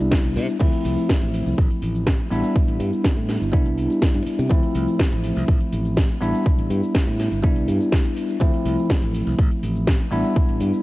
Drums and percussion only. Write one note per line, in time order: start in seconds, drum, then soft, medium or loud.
0.11 kick loud
0.11 snare loud
0.11 closed hi-hat medium
0.11 cabasa soft
0.24 closed hi-hat medium
0.36 open hi-hat loud
0.36 cabasa medium
0.48 closed hi-hat soft
0.48 cabasa soft
0.60 kick loud
0.60 closed hi-hat medium
0.60 crash medium
0.60 cabasa soft
0.73 closed hi-hat medium
0.85 open hi-hat loud
0.85 cabasa medium
0.98 cabasa soft
1.09 kick loud
1.09 snare loud
1.09 closed hi-hat medium
1.09 cabasa soft
1.22 closed hi-hat medium
1.34 open hi-hat loud
1.34 cabasa medium
1.46 closed hi-hat soft
1.46 cabasa soft
1.58 kick loud
1.58 closed hi-hat medium
1.58 cabasa soft
1.71 closed hi-hat medium
1.82 open hi-hat loud
1.82 cabasa medium
1.95 closed hi-hat soft
1.95 cabasa soft
2.07 kick loud
2.07 snare loud
2.07 closed hi-hat medium
2.07 cabasa soft
2.19 closed hi-hat medium
2.31 open hi-hat loud
2.31 cabasa medium
2.44 closed hi-hat soft
2.44 cabasa soft
2.56 kick loud
2.56 closed hi-hat medium
2.56 cabasa soft
2.68 closed hi-hat medium
2.80 open hi-hat loud
2.80 cabasa medium
2.93 cabasa soft
3.04 kick loud
3.04 snare loud
3.04 closed hi-hat medium
3.04 cabasa soft
3.17 closed hi-hat medium
3.29 snare soft
3.29 open hi-hat loud
3.29 cabasa medium
3.41 closed hi-hat soft
3.41 cabasa soft
3.53 kick loud
3.53 closed hi-hat medium
3.53 cabasa soft
3.66 closed hi-hat medium
3.78 open hi-hat loud
3.78 cabasa medium
3.90 closed hi-hat soft
3.90 cabasa soft
4.02 kick loud
4.02 snare loud
4.02 closed hi-hat medium
4.02 cabasa soft
4.15 closed hi-hat medium
4.26 open hi-hat loud
4.26 cabasa medium
4.39 closed hi-hat soft
4.39 cabasa soft
4.51 kick loud
4.51 closed hi-hat medium
4.51 cabasa soft
4.63 closed hi-hat medium
4.75 open hi-hat loud
4.75 cabasa medium
4.88 cabasa soft
5.00 kick loud
5.00 snare loud
5.00 closed hi-hat medium
5.00 cabasa soft
5.12 closed hi-hat medium
5.24 open hi-hat loud
5.24 cabasa medium
5.36 closed hi-hat soft
5.36 cabasa soft
5.48 kick loud
5.48 closed hi-hat medium
5.48 cabasa soft
5.61 closed hi-hat medium
5.72 open hi-hat loud
5.72 cabasa medium
5.85 closed hi-hat soft
5.85 cabasa soft
5.97 kick loud
5.97 snare loud
5.97 closed hi-hat medium
5.97 cabasa soft
6.10 closed hi-hat medium
6.21 open hi-hat loud
6.21 cabasa medium
6.34 closed hi-hat soft
6.34 cabasa soft
6.46 kick loud
6.46 closed hi-hat medium
6.46 cabasa soft
6.59 closed hi-hat medium
6.70 open hi-hat loud
6.70 cabasa medium
6.83 cabasa soft
6.95 kick loud
6.95 snare loud
6.95 closed hi-hat medium
6.95 cabasa soft
7.07 closed hi-hat medium
7.19 snare soft
7.19 open hi-hat loud
7.19 cabasa medium
7.32 closed hi-hat soft
7.32 cabasa soft
7.44 kick loud
7.44 closed hi-hat medium
7.44 cabasa soft
7.56 closed hi-hat soft
7.68 open hi-hat loud
7.68 cabasa medium
7.81 closed hi-hat soft
7.81 cabasa soft
7.92 kick loud
7.92 snare loud
7.92 closed hi-hat medium
7.92 cabasa soft
8.05 closed hi-hat medium
8.16 open hi-hat loud
8.16 cabasa medium
8.29 closed hi-hat soft
8.29 cabasa soft
8.41 kick loud
8.41 closed hi-hat medium
8.41 cabasa soft
8.54 closed hi-hat soft
8.66 open hi-hat loud
8.66 cabasa medium
8.78 cabasa soft
8.90 kick loud
8.90 snare loud
8.90 closed hi-hat medium
8.90 cabasa soft
9.03 closed hi-hat medium
9.14 open hi-hat loud
9.14 cabasa medium
9.27 closed hi-hat soft
9.27 cabasa soft
9.39 kick loud
9.39 closed hi-hat medium
9.39 cabasa soft
9.51 closed hi-hat medium
9.63 open hi-hat loud
9.63 cabasa medium
9.76 closed hi-hat soft
9.76 cabasa soft
9.87 kick loud
9.87 snare loud
9.87 closed hi-hat medium
9.87 cabasa soft
10.00 closed hi-hat medium
10.11 open hi-hat loud
10.11 cabasa medium
10.24 closed hi-hat soft
10.24 cabasa soft
10.36 kick loud
10.36 closed hi-hat medium
10.36 cabasa soft
10.49 closed hi-hat medium
10.60 open hi-hat loud
10.60 cabasa medium
10.73 cabasa soft